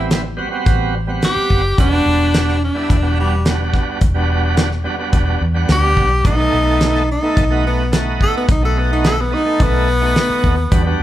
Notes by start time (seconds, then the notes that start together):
Already playing: A1 G3 B3 C4 E4
0.11 snare, closed hi-hat
0.37 G3 B3 C4 F#4
0.51 G3 B3 C4 F#4
0.66 A1, kick, closed hi-hat
1.07 G3 B3 C4 F#5
1.22 G4, snare, closed hi-hat
1.36 muted fingered electric bass stroke
1.50 F#1, kick
1.78 E1 G3 B3 D4 F#4, kick, closed hi-hat
1.91 G3 B3 D4 F#4
2.06 E1
2.34 snare, closed hi-hat
2.49 snare
2.64 D4
2.75 G3 B3 D4 E4
2.90 E1, kick, closed hi-hat
3.02 G3 B3 D4 F#4
3.20 G3
3.45 G3 B3 D4 F#4, snare, closed hi-hat
3.74 kick, snare
4.01 E1, kick, closed hi-hat
4.14 G3 B3 D4 F#4
4.57 snare, closed hi-hat
4.72 snare
4.84 G3 B3 D4 F#4
4.99 G3 B3 D4 F#4
5.13 E1, kick, closed hi-hat
5.41 E2
5.54 G3 B3 D4 F#5
5.69 D2 G4, snare, closed hi-hat
5.97 B1, kick
6.24 B1 A3 B3 D#4 F#4, kick, closed hi-hat
6.38 A3 B3 D#4 A4
6.53 B1
6.81 snare, closed hi-hat
6.95 snare
7.12 D#4
7.22 A3 B3 D#4 A4
7.37 B1, kick, closed hi-hat
7.51 A3 B3 D#4 F#4
7.67 B3
7.92 A3 B3 D#4 F#4, snare, closed hi-hat
8.21 A4, kick
8.37 B3
8.48 B1 D#4, kick, closed hi-hat
8.62 A3 B3 D#4 F#4 A4
8.79 B3
8.93 D#4
9.04 A4, snare, closed hi-hat
9.21 B3
9.31 A3 B3 D#4 F#4
9.45 A3 B3 D#4 A4
9.60 B1 B3, kick, closed hi-hat
10.01 A3 B3 D#4 F#4
10.16 snare, closed hi-hat
10.30 muted fingered electric bass stroke
10.44 D#2, kick
10.71 E2 G3 B3 D4 F#4, kick, closed hi-hat
10.85 G3 B3 D4 F#4